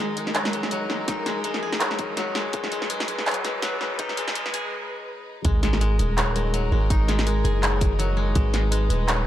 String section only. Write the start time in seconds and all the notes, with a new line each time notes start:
Already playing: G#3 D#4 A#4
2.54 B4
5.45 G#3 D#4 A#4
8.36 B4